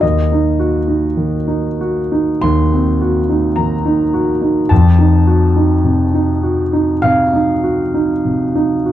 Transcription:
0.01 D#2 D#5
0.32 D#4
0.59 F#4
0.88 D#4
1.17 D#3
1.48 D#4
1.81 F#4
2.12 D#4
2.41 D#2 C6
2.73 C4
3.01 F#4
3.29 D#4
3.56 D#3 A#5
3.86 D#4
4.14 F#4
4.42 D#4
4.69 F2 A5
4.99 D#4
5.27 F#4
5.56 D#4
5.84 C3
6.14 D#4
6.43 F#4
6.73 D#4
7.02 C3 F5
7.33 D#4
7.64 F#4
7.94 D#4
8.25 C3
8.55 D#4
8.86 F#4

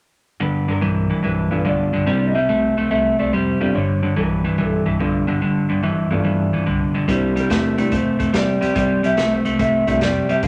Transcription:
0.40 G1 G2 D3 B4
0.68 G2 D3 A#4
0.81 B1 G2 E3
1.10 G2 E3
1.23 B1 G2 E3 B4
1.50 B1 G2 E3 A3 B3 D4 F4
1.65 B1 G2 D3 D5
1.93 B1 G2 D3
2.06 C2 C3 G3 A#3 D4 E4 D5
2.27 D#5
2.34 C2 C3 G3 E5
2.49 C2 C3 A3
2.77 C2 C3 A3
2.91 C2 C3 A3 E5
3.19 C2 C3 A3 D5
3.33 F2 C3 G3 C5
3.59 F1 C3 G3 A3 B3 D4 F4
3.74 G1 G2 D3 C#5
4.03 G2 D3
4.16 B1 G2 E3 B4
4.44 G2 E3
4.58 B1 G2 E3
4.67 A4
4.86 B1 G2 E3
5.00 B1 G2 D3 A3 B3 D4 F4
5.27 B1 G2 D3
5.41 G1 G2 D3
5.69 G1 G2 D3
5.83 G1 G2 E3
6.11 G1 G2 E3 A3 B3 D4 F4
6.24 G1 G2 E3
6.53 G1 G2 E3
6.66 C2 G2 D3
6.94 B1 G2 D3
7.08 C2 C3 G3 A#3 D4 E4, kick, closed hi-hat
7.12 C5
7.36 C3 G3 A#4, closed hi-hat
7.50 E2 C3 A3, snare, closed hi-hat
7.78 C3 G3 A3 A#3 D4 E4, closed hi-hat
7.92 E2 C3 A3 C5, kick, closed hi-hat
8.19 E2 C3 A3, kick, closed hi-hat
8.33 E2 C3 G3 D5, snare, closed hi-hat
8.61 E2 C3 G3, snare, closed hi-hat
8.75 C2 C3 G3 D5, kick, closed hi-hat
9.03 C2 C3 G3 E5, closed hi-hat
9.17 C2 C3 A3, snare, closed hi-hat
9.33 C5
9.45 C2 C3 A3, closed hi-hat
9.59 C2 C3 A3 E5, kick, closed hi-hat
9.86 C2 C3 G3 A3 A#3 D4 E4 E5, kick, closed hi-hat
10.00 F2 C3 G3 D5, snare, closed hi-hat
10.28 F#1 C3 G3 E5, closed hi-hat
10.43 G1 G2 D3 F5, kick, closed hi-hat

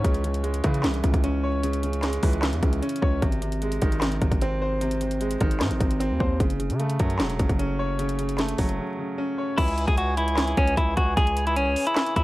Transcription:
Already playing: C#3 E3 G#3 C#4 C#5
0.04 C#2 C#3, kick, closed hi-hat
0.14 closed hi-hat
0.24 C#3, closed hi-hat
0.34 closed hi-hat
0.44 G#3, closed hi-hat
0.54 closed hi-hat
0.64 C#3 E3, kick, closed hi-hat
0.74 closed hi-hat
0.83 C2 C#3, snare, clap, closed hi-hat
0.94 closed hi-hat
1.03 C#2 C#3, kick, closed hi-hat
1.14 C#2, kick, closed hi-hat
1.24 C#4, closed hi-hat
1.44 C#5
1.63 C#3, closed hi-hat
1.73 closed hi-hat
1.83 C#3, closed hi-hat
1.93 closed hi-hat
2.02 G#3, snare, clap, closed hi-hat
2.13 closed hi-hat
2.23 C#2 E3, kick, open hi-hat
2.33 closed hi-hat
2.42 C#3, snare, clap, closed hi-hat
2.53 E2, closed hi-hat
2.63 C#2 C#3, kick, closed hi-hat
2.73 closed hi-hat
2.82 C#4, closed hi-hat
2.89 closed hi-hat
2.96 closed hi-hat
3.02 C#2 C#5, kick
3.22 G#1 C3, kick, closed hi-hat
3.32 closed hi-hat
3.42 C3, closed hi-hat
3.52 closed hi-hat
3.62 G#3, closed hi-hat
3.72 closed hi-hat
3.82 G#1 D#3, kick, closed hi-hat
3.92 closed hi-hat
4.01 C3, snare, clap, closed hi-hat
4.12 closed hi-hat
4.21 G#1 C3, kick, closed hi-hat
4.32 G#1, kick, closed hi-hat
4.42 C4, closed hi-hat
4.62 C5
4.81 C3, closed hi-hat
4.91 closed hi-hat
5.01 C3, closed hi-hat
5.11 closed hi-hat
5.21 G#3, closed hi-hat
5.31 closed hi-hat
5.41 G#1 D#3, kick, closed hi-hat
5.51 closed hi-hat
5.60 G#2 C3, snare, clap, closed hi-hat
5.71 G#1, closed hi-hat
5.80 G#1 C3, kick, closed hi-hat
5.91 closed hi-hat
6.00 C4, closed hi-hat
6.10 D#2
6.20 D#2 C5, kick
6.40 F#1 C#3, kick, closed hi-hat
6.50 closed hi-hat
6.59 C#3, closed hi-hat
6.70 C#3, closed hi-hat
6.80 A3, closed hi-hat
6.90 closed hi-hat
6.99 F#2 F#3, kick, closed hi-hat
7.10 closed hi-hat
7.19 E1 C#3, snare, clap, closed hi-hat
7.30 closed hi-hat
7.39 F#1 C#3, kick, closed hi-hat
7.49 F#1, kick, closed hi-hat
7.59 C#4, closed hi-hat
7.79 C#5
7.99 C#3, closed hi-hat
8.09 closed hi-hat
8.19 C#3, closed hi-hat
8.29 closed hi-hat
8.38 A3, snare, clap, closed hi-hat
8.49 closed hi-hat
8.58 F#1 F#3, kick, open hi-hat
8.69 closed hi-hat
8.79 C#3
8.98 C#3
9.18 C#4
9.38 C#5
9.58 C#2 C#3 E3 C#4 E4 G#4, kick, closed hi-hat, crash
9.68 closed hi-hat
9.78 closed hi-hat
9.87 C#2 G#4, kick, closed hi-hat
9.97 F#4, closed hi-hat
10.17 E4, closed hi-hat
10.28 closed hi-hat
10.37 snare, clap, closed hi-hat
10.48 closed hi-hat
10.57 C#2 C#4, kick, closed hi-hat
10.67 closed hi-hat
10.77 C#2 E4, kick, closed hi-hat
10.97 C#2 F#4, kick, closed hi-hat
11.17 C#2 G#4, kick, closed hi-hat
11.27 closed hi-hat
11.37 closed hi-hat
11.47 E4, closed hi-hat
11.56 C2 C#4, closed hi-hat
11.67 C#2
11.76 open hi-hat
11.87 E4, closed hi-hat
11.96 snare, clap, closed hi-hat
12.06 closed hi-hat
12.16 C#2 E4, kick, closed hi-hat

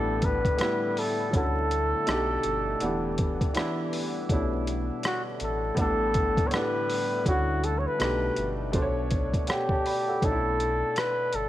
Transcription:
Already playing: A1 A2 D3 G3 A3 B3 D4 E4 A4
0.22 B4, kick, closed hi-hat
0.45 kick, closed hi-hat
0.57 A2 G3 B3 E4, closed hi-hat
0.61 cross-stick
0.97 A4, open hi-hat
1.31 D2 D3 C#4 E4 F#4, kick, closed hi-hat
1.36 A4
1.71 closed hi-hat
2.06 B1 B2 A3 B3 D4 D#4 G4 D5, cross-stick, closed hi-hat
2.43 G1, closed hi-hat
2.80 E1 E3 G3 B3 D4 G4, closed hi-hat
3.18 kick, closed hi-hat
3.41 kick, closed hi-hat
3.54 E3 B3 D4 E4, cross-stick, closed hi-hat
3.93 open hi-hat
4.29 B1 B2 D3 A3 C#4 D4 E4 C#5, kick, closed hi-hat
4.33 E4
4.67 closed hi-hat
5.03 F#4, cross-stick, closed hi-hat
5.40 A1 A4, closed hi-hat
5.75 A1 A2 G3 B3 D4, kick, closed hi-hat
5.80 A4
6.14 kick, closed hi-hat
6.37 kick, closed hi-hat
6.47 A2 C#5, closed hi-hat
6.52 G3 B3 D4 B4, cross-stick
6.89 open hi-hat
7.25 D2 D3 C#4 E4 F#4, kick, closed hi-hat
7.64 A4, closed hi-hat
7.79 C#5
7.87 B4
7.99 B1 B2 A3 B3 D4 D#4, cross-stick, closed hi-hat
8.03 G4
8.36 G1, closed hi-hat
8.72 B1 B2 D3 A3 D4 C5 C#5 F#5, kick, closed hi-hat
8.82 C#5
9.11 kick, closed hi-hat
9.34 kick, closed hi-hat
9.47 G4 A4 F#5, cross-stick, closed hi-hat
9.69 C#5 A5, kick
9.86 D5 B5, open hi-hat
10.08 A4 F#5
10.21 B1 B2 A3 C#4 D4 D#4 A4, kick, closed hi-hat
10.31 E4
10.60 closed hi-hat
10.96 B4, cross-stick, closed hi-hat
11.33 G1 A4, closed hi-hat

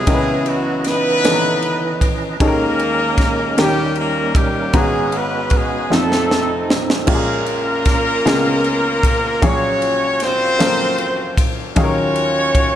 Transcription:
Already playing: G#3 B3 E4 G#4
0.07 C#2 C#3 E3 C#4 E4 A#4 D#5, kick, ride
0.14 B4
0.46 F#3 F#4, ride
0.84 B3 D#4 E4 B4, snare, ride
1.24 E3 C#4 A4 D#5, snare, ride
1.32 A#5
1.62 ride
2.01 kick, ride
2.40 D#2 D#3 G#3 A#3 C#4 D#4 G#4 A4 A#4, kick, ride
2.48 A#4
2.80 ride
3.18 kick, snare, ride
3.57 D#2 D#3 G3 A#3 C#4 D#4 G4 A#4, snare, ride
3.95 A#3 A#4, ride
4.35 G3 G4, kick, ride
4.73 G#1 G#2 G#3 B3 C#4 F#4 G#4 B4 A#5, kick, ride
5.12 B3 B4, ride
5.50 G#3 G#4, kick, ride
5.90 F1 F2 F3 A3 C4 D#4 F4 A4, snare
6.12 snare
6.31 snare
6.70 snare
6.90 snare
7.06 A#1 A#2 G#3 A#3 C#4 F4 G4, kick, crash
7.11 A#3 C#4 F4 G#4 A#4
7.46 ride
7.85 kick, snare, ride
8.25 C#2 C#3 G#3 B3 C#4 F4 G#4, snare, ride
8.64 ride
9.03 kick, ride
9.42 A#1 A#2 F#3 A#3 C#4 F4 F#4 G#4 C#5 F5, kick, ride
9.82 ride
10.20 C4 F4 F#4 C5, snare, ride
10.59 F#3 A#3 C#4 A4 F5, snare, ride
10.67 A#4
10.98 ride
11.37 kick, ride
11.76 D#2 D#3 F#3 C#4 D#4 F4 G#4 C#5 F5, kick, ride
11.80 F#4
11.84 A#4
12.16 ride
12.55 kick, ride

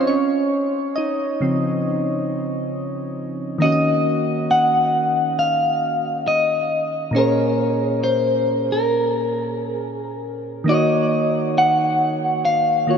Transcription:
Already playing: C4 C#4 C#5 D#5 F5
0.00 C5
0.07 C#4 C#5
0.96 D#4 D#5
1.40 C#3 F3 C4
3.58 D#3 A#3 C#4 D#5
3.64 F#4 D#5
3.72 D#5
4.51 F#5
5.39 F5
6.28 D#5
7.11 A#2 A#3 C#4
7.16 G#4 A#4 C#5
8.04 C5
8.72 A#4
9.71 G#4
10.64 D#3 A#3 D#4
10.69 F#4 C#5 D#5
11.58 F#5
12.45 F5
12.87 D#3 A#3 F4 F#4 C#5

